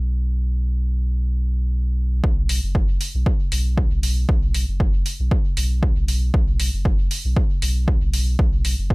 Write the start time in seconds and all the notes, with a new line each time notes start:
Already playing: B1
2.24 B1, kick
2.49 open hi-hat
2.63 F#1
2.75 kick
3.01 open hi-hat
3.15 B1
3.26 kick
3.52 B1, open hi-hat
3.78 kick
3.92 B1
4.03 open hi-hat
4.29 B1, kick
4.54 open hi-hat
4.68 F#1
4.80 kick
5.06 open hi-hat
5.20 B1
5.31 kick
5.57 B1, open hi-hat
5.83 kick
5.97 B1
6.08 open hi-hat
6.34 B1, kick
6.60 open hi-hat
6.74 F#1
6.85 kick
7.11 open hi-hat
7.25 B1
7.37 kick
7.62 B1, open hi-hat
7.88 kick
8.02 B1
8.13 open hi-hat
8.39 B1, kick
8.65 open hi-hat
8.79 F#1
8.90 kick